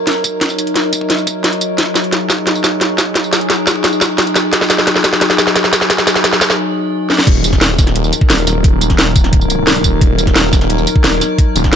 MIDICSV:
0, 0, Header, 1, 4, 480
1, 0, Start_track
1, 0, Key_signature, -6, "minor"
1, 0, Tempo, 342857
1, 578, Time_signature, 4, 2, 24, 8
1, 16457, End_track
2, 0, Start_track
2, 0, Title_t, "Synth drone"
2, 0, Program_c, 0, 95
2, 0, Note_on_c, 0, 54, 84
2, 0, Note_on_c, 0, 63, 73
2, 0, Note_on_c, 0, 70, 90
2, 2443, Note_off_c, 0, 70, 0
2, 2497, Note_on_c, 0, 68, 93
2, 10122, Note_off_c, 0, 54, 0
2, 10122, Note_off_c, 0, 68, 0
2, 10123, Note_off_c, 0, 63, 0
2, 10179, Note_on_c, 0, 70, 94
2, 10180, Note_on_c, 0, 63, 74
2, 10181, Note_on_c, 0, 54, 83
2, 16457, Note_off_c, 0, 54, 0
2, 16457, Note_off_c, 0, 63, 0
2, 16457, Note_off_c, 0, 70, 0
2, 16457, End_track
3, 0, Start_track
3, 0, Title_t, "Detuned saw bass"
3, 0, Program_c, 1, 39
3, 10178, Note_on_c, 1, 27, 98
3, 10879, Note_off_c, 1, 27, 0
3, 10899, Note_on_c, 1, 27, 96
3, 11120, Note_off_c, 1, 27, 0
3, 11137, Note_on_c, 1, 27, 98
3, 11359, Note_off_c, 1, 27, 0
3, 11619, Note_on_c, 1, 27, 98
3, 11840, Note_off_c, 1, 27, 0
3, 11858, Note_on_c, 1, 27, 104
3, 13759, Note_off_c, 1, 27, 0
3, 13778, Note_on_c, 1, 27, 101
3, 13999, Note_off_c, 1, 27, 0
3, 14019, Note_on_c, 1, 27, 100
3, 14720, Note_off_c, 1, 27, 0
3, 14739, Note_on_c, 1, 27, 96
3, 14960, Note_off_c, 1, 27, 0
3, 14977, Note_on_c, 1, 27, 99
3, 15199, Note_off_c, 1, 27, 0
3, 15458, Note_on_c, 1, 27, 102
3, 15679, Note_off_c, 1, 27, 0
3, 16177, Note_on_c, 1, 27, 102
3, 16457, Note_off_c, 1, 27, 0
3, 16457, End_track
4, 0, Start_track
4, 0, Title_t, "Drums"
4, 98, Note_on_c, 9, 38, 66
4, 98, Note_on_c, 9, 42, 87
4, 238, Note_off_c, 9, 38, 0
4, 238, Note_off_c, 9, 42, 0
4, 338, Note_on_c, 9, 36, 117
4, 339, Note_on_c, 9, 42, 64
4, 339, Note_on_c, 9, 54, 58
4, 478, Note_off_c, 9, 36, 0
4, 479, Note_off_c, 9, 42, 0
4, 479, Note_off_c, 9, 54, 0
4, 578, Note_on_c, 9, 36, 125
4, 578, Note_on_c, 9, 38, 67
4, 578, Note_on_c, 9, 42, 86
4, 698, Note_on_c, 9, 54, 26
4, 718, Note_off_c, 9, 36, 0
4, 718, Note_off_c, 9, 38, 0
4, 718, Note_off_c, 9, 42, 0
4, 818, Note_off_c, 9, 54, 0
4, 818, Note_on_c, 9, 42, 62
4, 818, Note_on_c, 9, 54, 58
4, 938, Note_off_c, 9, 42, 0
4, 938, Note_on_c, 9, 42, 34
4, 958, Note_off_c, 9, 54, 0
4, 1058, Note_off_c, 9, 42, 0
4, 1058, Note_on_c, 9, 38, 63
4, 1058, Note_on_c, 9, 42, 84
4, 1198, Note_off_c, 9, 38, 0
4, 1198, Note_off_c, 9, 42, 0
4, 1298, Note_on_c, 9, 36, 114
4, 1298, Note_on_c, 9, 42, 63
4, 1298, Note_on_c, 9, 54, 58
4, 1418, Note_off_c, 9, 36, 0
4, 1418, Note_on_c, 9, 36, 63
4, 1438, Note_off_c, 9, 42, 0
4, 1438, Note_off_c, 9, 54, 0
4, 1538, Note_on_c, 9, 38, 69
4, 1538, Note_on_c, 9, 42, 91
4, 1558, Note_off_c, 9, 36, 0
4, 1658, Note_on_c, 9, 54, 28
4, 1678, Note_off_c, 9, 38, 0
4, 1678, Note_off_c, 9, 42, 0
4, 1778, Note_off_c, 9, 54, 0
4, 1778, Note_on_c, 9, 36, 113
4, 1778, Note_on_c, 9, 42, 60
4, 1778, Note_on_c, 9, 54, 56
4, 1918, Note_off_c, 9, 36, 0
4, 1918, Note_off_c, 9, 42, 0
4, 1918, Note_off_c, 9, 54, 0
4, 2018, Note_on_c, 9, 38, 70
4, 2018, Note_on_c, 9, 42, 88
4, 2138, Note_off_c, 9, 42, 0
4, 2138, Note_on_c, 9, 42, 34
4, 2158, Note_off_c, 9, 38, 0
4, 2257, Note_off_c, 9, 42, 0
4, 2257, Note_on_c, 9, 42, 65
4, 2257, Note_on_c, 9, 54, 58
4, 2397, Note_off_c, 9, 42, 0
4, 2397, Note_off_c, 9, 54, 0
4, 2496, Note_on_c, 9, 38, 76
4, 2496, Note_on_c, 9, 42, 94
4, 2498, Note_on_c, 9, 36, 122
4, 2636, Note_off_c, 9, 38, 0
4, 2636, Note_off_c, 9, 42, 0
4, 2638, Note_off_c, 9, 36, 0
4, 2737, Note_on_c, 9, 38, 76
4, 2737, Note_on_c, 9, 42, 63
4, 2737, Note_on_c, 9, 54, 58
4, 2857, Note_off_c, 9, 42, 0
4, 2857, Note_on_c, 9, 42, 34
4, 2877, Note_off_c, 9, 38, 0
4, 2877, Note_off_c, 9, 54, 0
4, 2976, Note_off_c, 9, 42, 0
4, 2976, Note_on_c, 9, 38, 71
4, 2976, Note_on_c, 9, 42, 90
4, 3116, Note_off_c, 9, 38, 0
4, 3116, Note_off_c, 9, 42, 0
4, 3217, Note_on_c, 9, 38, 78
4, 3217, Note_on_c, 9, 42, 62
4, 3217, Note_on_c, 9, 54, 60
4, 3218, Note_on_c, 9, 36, 109
4, 3338, Note_off_c, 9, 36, 0
4, 3338, Note_on_c, 9, 36, 59
4, 3357, Note_off_c, 9, 38, 0
4, 3357, Note_off_c, 9, 42, 0
4, 3357, Note_off_c, 9, 54, 0
4, 3456, Note_on_c, 9, 38, 78
4, 3456, Note_on_c, 9, 42, 89
4, 3478, Note_off_c, 9, 36, 0
4, 3577, Note_on_c, 9, 54, 28
4, 3596, Note_off_c, 9, 38, 0
4, 3596, Note_off_c, 9, 42, 0
4, 3696, Note_off_c, 9, 54, 0
4, 3696, Note_on_c, 9, 38, 78
4, 3696, Note_on_c, 9, 42, 60
4, 3696, Note_on_c, 9, 54, 59
4, 3836, Note_off_c, 9, 38, 0
4, 3836, Note_off_c, 9, 42, 0
4, 3836, Note_off_c, 9, 54, 0
4, 3937, Note_on_c, 9, 38, 77
4, 3937, Note_on_c, 9, 42, 85
4, 4077, Note_off_c, 9, 38, 0
4, 4077, Note_off_c, 9, 42, 0
4, 4177, Note_on_c, 9, 38, 82
4, 4177, Note_on_c, 9, 42, 63
4, 4177, Note_on_c, 9, 54, 61
4, 4178, Note_on_c, 9, 36, 112
4, 4317, Note_off_c, 9, 38, 0
4, 4317, Note_off_c, 9, 42, 0
4, 4317, Note_off_c, 9, 54, 0
4, 4318, Note_off_c, 9, 36, 0
4, 4417, Note_on_c, 9, 38, 80
4, 4417, Note_on_c, 9, 42, 88
4, 4418, Note_on_c, 9, 36, 119
4, 4538, Note_on_c, 9, 54, 27
4, 4557, Note_off_c, 9, 38, 0
4, 4557, Note_off_c, 9, 42, 0
4, 4558, Note_off_c, 9, 36, 0
4, 4658, Note_off_c, 9, 54, 0
4, 4658, Note_on_c, 9, 38, 84
4, 4658, Note_on_c, 9, 42, 66
4, 4658, Note_on_c, 9, 54, 60
4, 4777, Note_off_c, 9, 42, 0
4, 4777, Note_on_c, 9, 42, 36
4, 4798, Note_off_c, 9, 38, 0
4, 4798, Note_off_c, 9, 54, 0
4, 4897, Note_off_c, 9, 42, 0
4, 4897, Note_on_c, 9, 38, 82
4, 4897, Note_on_c, 9, 42, 89
4, 5037, Note_off_c, 9, 38, 0
4, 5037, Note_off_c, 9, 42, 0
4, 5138, Note_on_c, 9, 36, 104
4, 5138, Note_on_c, 9, 38, 88
4, 5138, Note_on_c, 9, 42, 69
4, 5138, Note_on_c, 9, 54, 62
4, 5258, Note_off_c, 9, 36, 0
4, 5258, Note_on_c, 9, 36, 61
4, 5278, Note_off_c, 9, 38, 0
4, 5278, Note_off_c, 9, 42, 0
4, 5278, Note_off_c, 9, 54, 0
4, 5377, Note_on_c, 9, 38, 86
4, 5377, Note_on_c, 9, 42, 91
4, 5398, Note_off_c, 9, 36, 0
4, 5498, Note_on_c, 9, 54, 31
4, 5517, Note_off_c, 9, 38, 0
4, 5517, Note_off_c, 9, 42, 0
4, 5618, Note_off_c, 9, 54, 0
4, 5618, Note_on_c, 9, 38, 89
4, 5618, Note_on_c, 9, 42, 67
4, 5618, Note_on_c, 9, 54, 63
4, 5619, Note_on_c, 9, 36, 104
4, 5758, Note_off_c, 9, 38, 0
4, 5758, Note_off_c, 9, 42, 0
4, 5758, Note_off_c, 9, 54, 0
4, 5759, Note_off_c, 9, 36, 0
4, 5857, Note_on_c, 9, 38, 90
4, 5857, Note_on_c, 9, 42, 93
4, 5978, Note_off_c, 9, 42, 0
4, 5978, Note_on_c, 9, 42, 35
4, 5997, Note_off_c, 9, 38, 0
4, 6098, Note_off_c, 9, 42, 0
4, 6098, Note_on_c, 9, 38, 89
4, 6098, Note_on_c, 9, 42, 67
4, 6098, Note_on_c, 9, 54, 64
4, 6238, Note_off_c, 9, 38, 0
4, 6238, Note_off_c, 9, 42, 0
4, 6238, Note_off_c, 9, 54, 0
4, 6338, Note_on_c, 9, 38, 91
4, 6338, Note_on_c, 9, 42, 102
4, 6339, Note_on_c, 9, 36, 118
4, 6458, Note_off_c, 9, 38, 0
4, 6458, Note_on_c, 9, 38, 80
4, 6478, Note_off_c, 9, 42, 0
4, 6479, Note_off_c, 9, 36, 0
4, 6578, Note_off_c, 9, 38, 0
4, 6578, Note_on_c, 9, 38, 93
4, 6578, Note_on_c, 9, 42, 68
4, 6578, Note_on_c, 9, 54, 64
4, 6699, Note_off_c, 9, 38, 0
4, 6699, Note_off_c, 9, 42, 0
4, 6699, Note_on_c, 9, 38, 82
4, 6699, Note_on_c, 9, 42, 38
4, 6718, Note_off_c, 9, 54, 0
4, 6818, Note_off_c, 9, 38, 0
4, 6818, Note_off_c, 9, 42, 0
4, 6818, Note_on_c, 9, 38, 93
4, 6818, Note_on_c, 9, 42, 91
4, 6939, Note_off_c, 9, 38, 0
4, 6939, Note_on_c, 9, 38, 82
4, 6958, Note_off_c, 9, 42, 0
4, 7058, Note_off_c, 9, 38, 0
4, 7058, Note_on_c, 9, 38, 97
4, 7058, Note_on_c, 9, 42, 69
4, 7058, Note_on_c, 9, 54, 65
4, 7059, Note_on_c, 9, 36, 103
4, 7177, Note_off_c, 9, 38, 0
4, 7177, Note_on_c, 9, 38, 85
4, 7179, Note_off_c, 9, 36, 0
4, 7179, Note_on_c, 9, 36, 60
4, 7198, Note_off_c, 9, 42, 0
4, 7198, Note_off_c, 9, 54, 0
4, 7298, Note_off_c, 9, 38, 0
4, 7298, Note_on_c, 9, 38, 98
4, 7298, Note_on_c, 9, 42, 101
4, 7319, Note_off_c, 9, 36, 0
4, 7418, Note_off_c, 9, 38, 0
4, 7418, Note_on_c, 9, 38, 88
4, 7418, Note_on_c, 9, 54, 31
4, 7438, Note_off_c, 9, 42, 0
4, 7538, Note_off_c, 9, 38, 0
4, 7538, Note_off_c, 9, 54, 0
4, 7538, Note_on_c, 9, 38, 98
4, 7538, Note_on_c, 9, 42, 69
4, 7538, Note_on_c, 9, 54, 62
4, 7658, Note_off_c, 9, 38, 0
4, 7658, Note_on_c, 9, 38, 87
4, 7678, Note_off_c, 9, 42, 0
4, 7678, Note_off_c, 9, 54, 0
4, 7778, Note_off_c, 9, 38, 0
4, 7778, Note_on_c, 9, 38, 93
4, 7778, Note_on_c, 9, 42, 93
4, 7898, Note_off_c, 9, 38, 0
4, 7898, Note_on_c, 9, 38, 86
4, 7918, Note_off_c, 9, 42, 0
4, 8018, Note_off_c, 9, 38, 0
4, 8018, Note_on_c, 9, 38, 104
4, 8018, Note_on_c, 9, 42, 69
4, 8018, Note_on_c, 9, 54, 65
4, 8019, Note_on_c, 9, 36, 105
4, 8138, Note_off_c, 9, 38, 0
4, 8138, Note_on_c, 9, 38, 89
4, 8158, Note_off_c, 9, 42, 0
4, 8158, Note_off_c, 9, 54, 0
4, 8159, Note_off_c, 9, 36, 0
4, 8258, Note_off_c, 9, 38, 0
4, 8258, Note_on_c, 9, 36, 122
4, 8258, Note_on_c, 9, 38, 103
4, 8258, Note_on_c, 9, 42, 99
4, 8378, Note_off_c, 9, 38, 0
4, 8378, Note_off_c, 9, 42, 0
4, 8378, Note_on_c, 9, 38, 85
4, 8378, Note_on_c, 9, 42, 37
4, 8378, Note_on_c, 9, 54, 28
4, 8398, Note_off_c, 9, 36, 0
4, 8498, Note_off_c, 9, 38, 0
4, 8498, Note_off_c, 9, 42, 0
4, 8498, Note_off_c, 9, 54, 0
4, 8498, Note_on_c, 9, 38, 103
4, 8498, Note_on_c, 9, 42, 67
4, 8498, Note_on_c, 9, 54, 62
4, 8618, Note_off_c, 9, 38, 0
4, 8618, Note_off_c, 9, 42, 0
4, 8618, Note_on_c, 9, 38, 88
4, 8618, Note_on_c, 9, 42, 38
4, 8638, Note_off_c, 9, 54, 0
4, 8737, Note_off_c, 9, 38, 0
4, 8737, Note_off_c, 9, 42, 0
4, 8737, Note_on_c, 9, 38, 103
4, 8737, Note_on_c, 9, 42, 94
4, 8858, Note_off_c, 9, 38, 0
4, 8858, Note_on_c, 9, 38, 93
4, 8877, Note_off_c, 9, 42, 0
4, 8977, Note_off_c, 9, 38, 0
4, 8977, Note_on_c, 9, 38, 105
4, 8977, Note_on_c, 9, 42, 70
4, 8977, Note_on_c, 9, 54, 66
4, 8978, Note_on_c, 9, 36, 104
4, 9098, Note_off_c, 9, 36, 0
4, 9098, Note_on_c, 9, 36, 58
4, 9099, Note_off_c, 9, 38, 0
4, 9099, Note_off_c, 9, 54, 0
4, 9099, Note_on_c, 9, 38, 97
4, 9099, Note_on_c, 9, 54, 30
4, 9117, Note_off_c, 9, 42, 0
4, 9238, Note_off_c, 9, 36, 0
4, 9239, Note_off_c, 9, 38, 0
4, 9239, Note_off_c, 9, 54, 0
4, 9938, Note_on_c, 9, 38, 65
4, 10059, Note_off_c, 9, 38, 0
4, 10059, Note_on_c, 9, 38, 75
4, 10178, Note_on_c, 9, 36, 125
4, 10180, Note_on_c, 9, 42, 104
4, 10180, Note_on_c, 9, 49, 104
4, 10199, Note_off_c, 9, 38, 0
4, 10318, Note_off_c, 9, 36, 0
4, 10320, Note_off_c, 9, 42, 0
4, 10320, Note_off_c, 9, 49, 0
4, 10418, Note_on_c, 9, 42, 66
4, 10418, Note_on_c, 9, 54, 62
4, 10538, Note_on_c, 9, 36, 61
4, 10539, Note_off_c, 9, 42, 0
4, 10539, Note_on_c, 9, 40, 37
4, 10539, Note_on_c, 9, 42, 38
4, 10558, Note_off_c, 9, 54, 0
4, 10658, Note_off_c, 9, 42, 0
4, 10658, Note_on_c, 9, 38, 116
4, 10658, Note_on_c, 9, 42, 96
4, 10678, Note_off_c, 9, 36, 0
4, 10679, Note_off_c, 9, 40, 0
4, 10798, Note_off_c, 9, 38, 0
4, 10798, Note_off_c, 9, 42, 0
4, 10899, Note_on_c, 9, 36, 104
4, 10899, Note_on_c, 9, 40, 38
4, 10899, Note_on_c, 9, 42, 69
4, 10899, Note_on_c, 9, 54, 61
4, 11018, Note_off_c, 9, 40, 0
4, 11018, Note_off_c, 9, 42, 0
4, 11018, Note_on_c, 9, 40, 36
4, 11018, Note_on_c, 9, 42, 39
4, 11039, Note_off_c, 9, 36, 0
4, 11039, Note_off_c, 9, 54, 0
4, 11138, Note_off_c, 9, 42, 0
4, 11138, Note_on_c, 9, 42, 97
4, 11158, Note_off_c, 9, 40, 0
4, 11258, Note_on_c, 9, 54, 29
4, 11278, Note_off_c, 9, 42, 0
4, 11377, Note_off_c, 9, 54, 0
4, 11377, Note_on_c, 9, 42, 68
4, 11377, Note_on_c, 9, 54, 59
4, 11499, Note_on_c, 9, 36, 104
4, 11517, Note_off_c, 9, 42, 0
4, 11517, Note_off_c, 9, 54, 0
4, 11618, Note_on_c, 9, 38, 118
4, 11618, Note_on_c, 9, 42, 96
4, 11639, Note_off_c, 9, 36, 0
4, 11738, Note_off_c, 9, 42, 0
4, 11738, Note_on_c, 9, 42, 37
4, 11758, Note_off_c, 9, 38, 0
4, 11858, Note_off_c, 9, 42, 0
4, 11858, Note_on_c, 9, 40, 39
4, 11858, Note_on_c, 9, 42, 71
4, 11858, Note_on_c, 9, 54, 63
4, 11998, Note_off_c, 9, 40, 0
4, 11998, Note_off_c, 9, 42, 0
4, 11998, Note_off_c, 9, 54, 0
4, 12099, Note_on_c, 9, 36, 127
4, 12099, Note_on_c, 9, 42, 98
4, 12239, Note_off_c, 9, 36, 0
4, 12239, Note_off_c, 9, 42, 0
4, 12339, Note_on_c, 9, 42, 68
4, 12339, Note_on_c, 9, 54, 59
4, 12459, Note_off_c, 9, 42, 0
4, 12459, Note_on_c, 9, 36, 66
4, 12459, Note_on_c, 9, 40, 37
4, 12459, Note_on_c, 9, 42, 37
4, 12479, Note_off_c, 9, 54, 0
4, 12580, Note_off_c, 9, 42, 0
4, 12580, Note_on_c, 9, 38, 121
4, 12580, Note_on_c, 9, 42, 90
4, 12599, Note_off_c, 9, 36, 0
4, 12599, Note_off_c, 9, 40, 0
4, 12720, Note_off_c, 9, 38, 0
4, 12720, Note_off_c, 9, 42, 0
4, 12819, Note_on_c, 9, 36, 114
4, 12819, Note_on_c, 9, 42, 68
4, 12819, Note_on_c, 9, 54, 59
4, 12939, Note_off_c, 9, 42, 0
4, 12939, Note_on_c, 9, 40, 37
4, 12939, Note_on_c, 9, 42, 38
4, 12959, Note_off_c, 9, 36, 0
4, 12959, Note_off_c, 9, 54, 0
4, 13059, Note_off_c, 9, 42, 0
4, 13059, Note_on_c, 9, 36, 112
4, 13059, Note_on_c, 9, 42, 92
4, 13079, Note_off_c, 9, 40, 0
4, 13179, Note_on_c, 9, 54, 28
4, 13199, Note_off_c, 9, 36, 0
4, 13199, Note_off_c, 9, 42, 0
4, 13299, Note_off_c, 9, 54, 0
4, 13299, Note_on_c, 9, 42, 65
4, 13299, Note_on_c, 9, 54, 59
4, 13439, Note_off_c, 9, 42, 0
4, 13439, Note_off_c, 9, 54, 0
4, 13539, Note_on_c, 9, 38, 121
4, 13539, Note_on_c, 9, 42, 90
4, 13659, Note_off_c, 9, 42, 0
4, 13659, Note_on_c, 9, 42, 38
4, 13679, Note_off_c, 9, 38, 0
4, 13779, Note_off_c, 9, 42, 0
4, 13779, Note_on_c, 9, 36, 65
4, 13779, Note_on_c, 9, 42, 70
4, 13779, Note_on_c, 9, 54, 59
4, 13919, Note_off_c, 9, 36, 0
4, 13919, Note_off_c, 9, 42, 0
4, 13919, Note_off_c, 9, 54, 0
4, 14019, Note_on_c, 9, 36, 127
4, 14020, Note_on_c, 9, 42, 90
4, 14159, Note_off_c, 9, 36, 0
4, 14160, Note_off_c, 9, 42, 0
4, 14259, Note_on_c, 9, 42, 67
4, 14259, Note_on_c, 9, 54, 58
4, 14379, Note_off_c, 9, 42, 0
4, 14379, Note_on_c, 9, 36, 63
4, 14379, Note_on_c, 9, 40, 36
4, 14379, Note_on_c, 9, 42, 36
4, 14399, Note_off_c, 9, 54, 0
4, 14499, Note_off_c, 9, 42, 0
4, 14499, Note_on_c, 9, 38, 127
4, 14499, Note_on_c, 9, 42, 88
4, 14519, Note_off_c, 9, 36, 0
4, 14519, Note_off_c, 9, 40, 0
4, 14639, Note_off_c, 9, 38, 0
4, 14639, Note_off_c, 9, 42, 0
4, 14738, Note_on_c, 9, 40, 39
4, 14738, Note_on_c, 9, 42, 66
4, 14738, Note_on_c, 9, 54, 55
4, 14739, Note_on_c, 9, 36, 115
4, 14858, Note_off_c, 9, 40, 0
4, 14858, Note_off_c, 9, 42, 0
4, 14858, Note_on_c, 9, 40, 35
4, 14858, Note_on_c, 9, 42, 36
4, 14878, Note_off_c, 9, 54, 0
4, 14879, Note_off_c, 9, 36, 0
4, 14978, Note_off_c, 9, 42, 0
4, 14978, Note_on_c, 9, 42, 90
4, 14998, Note_off_c, 9, 40, 0
4, 15098, Note_on_c, 9, 54, 28
4, 15118, Note_off_c, 9, 42, 0
4, 15218, Note_off_c, 9, 54, 0
4, 15218, Note_on_c, 9, 42, 62
4, 15218, Note_on_c, 9, 54, 56
4, 15339, Note_on_c, 9, 36, 111
4, 15358, Note_off_c, 9, 42, 0
4, 15358, Note_off_c, 9, 54, 0
4, 15458, Note_on_c, 9, 38, 120
4, 15458, Note_on_c, 9, 42, 90
4, 15479, Note_off_c, 9, 36, 0
4, 15579, Note_off_c, 9, 42, 0
4, 15579, Note_on_c, 9, 42, 36
4, 15598, Note_off_c, 9, 38, 0
4, 15699, Note_off_c, 9, 42, 0
4, 15699, Note_on_c, 9, 40, 37
4, 15699, Note_on_c, 9, 42, 66
4, 15699, Note_on_c, 9, 54, 57
4, 15839, Note_off_c, 9, 40, 0
4, 15839, Note_off_c, 9, 42, 0
4, 15839, Note_off_c, 9, 54, 0
4, 15939, Note_on_c, 9, 36, 127
4, 15939, Note_on_c, 9, 42, 91
4, 16079, Note_off_c, 9, 36, 0
4, 16079, Note_off_c, 9, 42, 0
4, 16180, Note_on_c, 9, 42, 64
4, 16180, Note_on_c, 9, 54, 59
4, 16299, Note_off_c, 9, 42, 0
4, 16299, Note_on_c, 9, 36, 64
4, 16299, Note_on_c, 9, 40, 34
4, 16299, Note_on_c, 9, 42, 36
4, 16320, Note_off_c, 9, 54, 0
4, 16439, Note_off_c, 9, 36, 0
4, 16439, Note_off_c, 9, 40, 0
4, 16439, Note_off_c, 9, 42, 0
4, 16457, End_track
0, 0, End_of_file